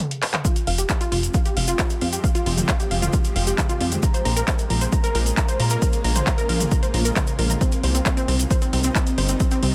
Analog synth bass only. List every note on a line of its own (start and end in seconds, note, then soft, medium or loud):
0.67 0.84 F1 loud
1.12 1.29 F1 medium
1.57 1.74 F1 medium
2.01 2.19 F2 medium
2.46 2.63 F1 loud
2.91 3.08 F1 medium
3.36 3.53 F1 medium
3.81 3.98 F2 medium
4.25 4.42 A#1 loud
4.70 4.87 A#1 medium
5.15 5.32 A#1 medium
5.60 5.77 A#2 medium
6.04 6.22 A#1 loud
6.49 6.66 A#1 medium
6.94 7.11 A#1 medium
7.39 7.56 A#1 loud
7.83 8.01 C2 loud
8.28 8.45 C2 medium
8.73 8.90 C2 medium
9.18 9.35 G1 medium
9.63 9.75 C2 loud